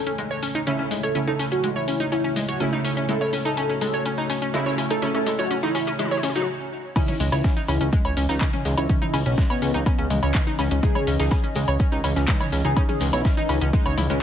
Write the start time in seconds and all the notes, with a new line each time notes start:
Already playing: C#3 E3 A3 E4 A4 C#5
0.07 C#4, closed hi-hat
0.18 G#3, closed hi-hat, mid tom
0.31 C#5
0.43 C#4, open hi-hat
0.55 D#4, closed hi-hat
0.67 C#3 A3 C#4 E4, closed hi-hat, mid tom
0.79 C#4, mid tom
0.91 G#3, open hi-hat
1.03 A4 C#5, closed hi-hat
1.15 C#3 A3 C#4 E4, closed hi-hat, mid tom
1.27 D#4 A4, mid tom
1.39 C#4, open hi-hat
1.52 C#4 F#4, closed hi-hat
1.64 G#3, closed hi-hat, mid tom
1.76 E4 C#5
1.88 C#4, open hi-hat
2.00 D#4, closed hi-hat
2.12 C#4 E4, closed hi-hat, mid tom
2.24 C#4
2.36 G#3, mid tom, open hi-hat
2.48 F#4 C#5, closed hi-hat
2.60 C#3 A3 C#4 E4, closed hi-hat, mid tom
2.73 D#4
2.85 C#4, open hi-hat
2.97 C#4, closed hi-hat
3.09 C#3 G#3 A3 E4 F#4 A4, closed hi-hat, mid tom
3.21 C#5, mid tom
3.33 C#4, open hi-hat, mid tom
3.45 D#4 A4, closed hi-hat
3.57 C#4, closed hi-hat, mid tom
3.69 C#4
3.81 G#3 A4, open hi-hat, mid tom
3.94 C#5, closed hi-hat
4.05 C#4, closed hi-hat, mid tom
4.18 D#4
4.30 C#4, open hi-hat, mid tom
4.42 C#4, closed hi-hat
4.54 C#3 G#3 A3 E4, closed hi-hat, mid tom
4.66 C#5, mid tom
4.78 C#4, open hi-hat, mid tom
4.90 D#4 A4, closed hi-hat
5.02 C#3 A3 C#4 E4, closed hi-hat, mid tom
5.15 C#4 A4, mid tom
5.26 G#3, open hi-hat, mid tom
5.39 F#4 C#5, closed hi-hat, mid tom
5.51 C#4, closed hi-hat, mid tom
5.63 D#4 E4, mid tom
5.75 C#4, open hi-hat, mid tom
5.87 C#4, closed hi-hat, mid tom
5.99 G#3 E4, closed hi-hat, mid tom
6.05 mid tom
6.11 C#5, mid tom
6.17 mid tom
6.23 C#4, mid tom, open hi-hat
6.29 mid tom
6.35 D#4 F#4, closed hi-hat, mid tom
6.42 mid tom
6.96 C#3 E3 C#4 D#4 E4 D#5, kick, closed hi-hat, crash, low woodblock, shaker
7.08 C#4, closed hi-hat, mid tom
7.20 C#2 G#3, open hi-hat, shaker
7.32 C#2 E4 C#5, snare, closed hi-hat, low woodblock
7.44 C#4, kick, snare, closed hi-hat, shaker
7.57 D#4, closed hi-hat
7.67 C#2 C#4 E4, open hi-hat, low woodblock, shaker
7.81 C#2 C#4, closed hi-hat
7.92 G#3, kick, closed hi-hat, shaker
8.05 C#2 C#5, closed hi-hat, low woodblock
8.17 C#2 C#4, open hi-hat, shaker
8.29 C#2 D#4, snare, closed hi-hat
8.41 C#3 E3 C#4 D#4, kick, snare, clap, closed hi-hat, low woodblock, shaker
8.53 C#4, closed hi-hat, mid tom
8.65 C#2 G#3, open hi-hat, shaker
8.78 C#2 E4 C#5, closed hi-hat, low woodblock
8.89 C#3 E3 C#4 D#4, kick, closed hi-hat, shaker
9.02 D#4 E4, closed hi-hat, mid tom
9.14 C#2 C#4, open hi-hat, low woodblock
9.26 B1 C#4, closed hi-hat
9.37 G#3, kick, snare, closed hi-hat, shaker
9.50 B3 C#5, closed hi-hat, low woodblock
9.61 C#2 C#4, open hi-hat, shaker
9.74 C#2 D#4, closed hi-hat
9.86 B3 C#4, kick, closed hi-hat, low woodblock, shaker
9.98 C#2 C#4, closed hi-hat
10.10 C#2 G#3, mid tom, open hi-hat, shaker
10.23 C#2 C#4 C#5, closed hi-hat, low woodblock
10.35 C#3 E3 C#4 D#4, kick, snare, clap, closed hi-hat, shaker
10.47 D#4, closed hi-hat
10.58 C#2 C#4, snare, open hi-hat, low woodblock, shaker
10.71 C#2 C#4, closed hi-hat
10.83 C#3 E3 G#3 D#4 G#4, kick, closed hi-hat, shaker
10.95 C#5, closed hi-hat, mid tom, low woodblock
11.07 C#2 C#4, open hi-hat, shaker
11.19 C#2 D#4 G#4, snare, closed hi-hat
11.31 C#4, kick, snare, closed hi-hat, low woodblock, shaker
11.44 C#4, closed hi-hat
11.55 C#2 G#3 G#4, open hi-hat, shaker
11.68 C#2 C#5, closed hi-hat, low woodblock
11.79 C#4, kick, closed hi-hat, shaker
11.92 C#2 D#4, closed hi-hat
12.04 C#2 C#4, open hi-hat, low woodblock, shaker
12.16 C#2 C#4, snare, closed hi-hat
12.28 C#3 E3 G#3 D#4, kick, snare, clap, closed hi-hat, shaker
12.40 C#5, closed hi-hat, mid tom, low woodblock
12.52 C#2 C#4, open hi-hat, shaker
12.65 C#2 D#4 G#4, closed hi-hat
12.77 C#3 E3 C#4 D#4, kick, closed hi-hat, low woodblock, shaker
12.89 C#4 G#4, closed hi-hat, mid tom
13.00 C#2 G#3, open hi-hat
13.13 B1 E4 C#5, closed hi-hat, low woodblock
13.25 C#4, kick, snare, closed hi-hat, shaker
13.37 D#4, closed hi-hat
13.49 C#2 C#4, open hi-hat, low woodblock, shaker
13.61 C#2 C#4, closed hi-hat
13.73 G#3 D#4, kick, closed hi-hat, shaker
13.86 C#2 C#5, closed hi-hat, low woodblock
13.97 C#2 E4, mid tom, open hi-hat
14.10 C#2 G#3 C#4, closed hi-hat